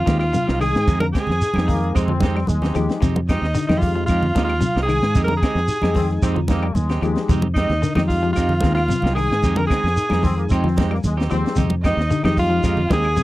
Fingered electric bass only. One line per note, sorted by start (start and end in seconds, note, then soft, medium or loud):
0.08 0.31 D#2 loud
0.49 0.72 C2 medium
0.75 0.87 G#2 medium
0.88 1.12 F2 medium
1.29 1.41 F2 medium
1.57 1.92 F2 medium
1.96 2.43 F2 medium
2.50 2.73 D#2 medium
2.76 2.88 D#2 medium
3.03 3.38 F2 loud
3.42 3.54 D#2 medium
3.70 4.05 F2 loud
4.09 4.33 F2 loud
4.36 4.60 D#2 medium
4.76 5.00 C2 medium
5.02 5.14 G#2 medium
5.16 5.40 F2 medium
5.55 5.68 F2 medium
5.83 6.19 F2 medium
6.22 6.70 F2 medium
6.75 6.99 D#2 medium
7.02 7.15 D#2 medium
7.29 7.65 F2 medium
7.70 7.82 D#2 medium
7.97 8.32 F2 medium
8.37 8.61 F2 medium
8.63 8.87 D#2 medium
9.03 9.27 C2 medium
9.31 9.43 G#2 medium
9.44 9.68 F2 medium
9.84 9.96 F2 medium
10.11 10.47 F2 medium
10.51 10.98 F2 medium
11.05 11.28 D#2 medium
11.32 11.43 D#2 medium
11.59 11.94 F2 medium
11.97 12.09 D#2 medium
12.24 12.60 F2 loud
12.64 12.88 F2 medium
12.91 13.15 D#2 medium